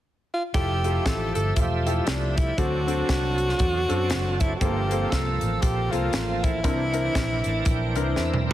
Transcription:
0.33 F4
0.54 F1 F3 A3 E4 F4 G4 A4 E5, kick, closed hi-hat
0.84 E4 F4 G4 A4, closed hi-hat
1.06 A1 A4, kick, snare, closed hi-hat
1.35 G1 A4, closed hi-hat
1.56 E1 F4, kick, closed hi-hat
1.86 E4 F4 G4 A4, closed hi-hat
2.06 C2 D4, snare, closed hi-hat
2.36 E4, kick, closed hi-hat
2.57 D2 D3 F#3 C4 D4 F#4 A4, kick, closed hi-hat
2.87 C4 D4 F#4 A4, closed hi-hat
3.09 C2, kick, snare, closed hi-hat
3.38 closed hi-hat
3.49 snare
3.59 E2, kick, closed hi-hat
3.89 F#2 C4 D4 F#4 A4, closed hi-hat
4.10 F#1, snare, closed hi-hat
4.40 E4, kick, closed hi-hat
4.55 F#4 G4
4.61 G1 G2 F3 A#3 C4 F4 A4, kick, closed hi-hat
4.91 A#3 C4 F4 A4, closed hi-hat
5.11 C2 A4, kick, snare, closed hi-hat
5.41 A1, closed hi-hat
5.62 A#1 G4, kick, closed hi-hat
5.91 C2 A#3 C4 F4 A4, closed hi-hat
6.13 A1, snare, closed hi-hat
6.43 E4, kick, closed hi-hat
6.63 C2 C3 D#3 C4 D4 E4 A#4, kick, closed hi-hat
6.71 E3
6.93 C4 D4 E4 A#4, closed hi-hat
7.15 A#1, kick, snare, closed hi-hat
7.44 A1 A5, closed hi-hat
7.65 A#1 G5, kick, closed hi-hat
7.95 C2 C4 D4 E4 A#4, closed hi-hat
8.16 E2 E5, snare
8.34 mid tom
8.47 C5

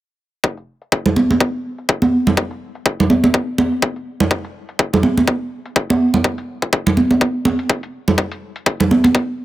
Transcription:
0.44 kick
0.57 closed hi-hat
0.82 closed hi-hat
0.92 kick
1.06 closed hi-hat, low conga
1.16 high conga
1.30 closed hi-hat, high conga
1.40 kick, closed hi-hat
1.78 closed hi-hat
1.89 kick
2.02 closed hi-hat, high conga
2.27 low conga
2.37 kick
2.51 closed hi-hat
2.75 closed hi-hat
2.86 kick
2.99 closed hi-hat, low conga
3.10 high conga
3.24 closed hi-hat, high conga
3.34 kick
3.58 high conga
3.72 closed hi-hat
3.82 kick
3.96 closed hi-hat
4.20 low conga
4.31 kick, closed hi-hat
4.45 closed hi-hat
4.69 closed hi-hat
4.79 kick
4.93 closed hi-hat, low conga
5.03 high conga
5.17 closed hi-hat, high conga
5.28 kick, closed hi-hat
5.65 closed hi-hat
5.76 kick, closed hi-hat
5.90 closed hi-hat, high conga
6.14 low conga
6.24 kick, closed hi-hat
6.38 closed hi-hat
6.62 kick, closed hi-hat
6.73 kick, closed hi-hat
6.86 closed hi-hat, low conga
6.97 high conga
7.11 closed hi-hat, high conga
7.21 kick, closed hi-hat
7.45 high conga
7.59 closed hi-hat
7.69 kick, closed hi-hat
7.83 closed hi-hat
8.08 low conga
8.18 kick, closed hi-hat
8.32 closed hi-hat
8.56 closed hi-hat
8.66 kick, closed hi-hat
8.80 closed hi-hat, low conga
8.91 high conga
9.04 closed hi-hat, high conga
9.14 kick, closed hi-hat

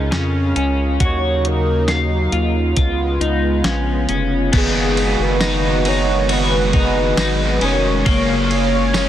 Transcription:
Already playing: C#2 C#3 G#3 C#4 D#4 F4 G#4 A#4
0.11 F2 C#4, snare, closed hi-hat
0.56 C#2 C#4, closed hi-hat
1.00 D#2 F#3 A#3 D#4 F#4, kick, closed hi-hat
1.05 C#5
1.45 A#4, closed hi-hat
1.88 F#4 F5, snare, closed hi-hat
2.32 D#2 F4, closed hi-hat
2.76 C#2 G#3 B3 F4, kick, closed hi-hat
3.20 C#2 D#4, closed hi-hat
3.64 A#1 C#4, snare, closed hi-hat
3.93 C#5
4.09 F1 C#4, closed hi-hat
4.53 F#1 D#3 F#3 G#3 B3 D#4 F#4 G#4, kick, crash, ride
4.57 G#4
4.64 B4
4.69 D#5
4.74 F5
4.97 B3 D#4 G#4, ride
5.19 F#1 B4
5.41 F#3 G#3 B3 D#4 G#4, snare, ride, tambourine
5.85 B3 D#4 G#4 C#5, ride
6.29 G#3 B3 D#4 F#4 B4, ride
6.33 G#4
6.51 F#4
6.73 B3 D#4 G#4 B4, kick, ride
7.17 G#1 F#3 G#3 B3 D#4 G#4, snare, ride, tambourine
7.61 F1 B3 C#4 D#4 G#4 C#5, ride
7.68 A#4
8.05 F#1 C#3 F#3 A#3 C#4 F4 G#4 F5, kick, ride
8.49 C#4 F4 G#4, ride
8.74 C#5
8.94 F#3 A#3 C#4 F4 G#4, snare, ride, tambourine

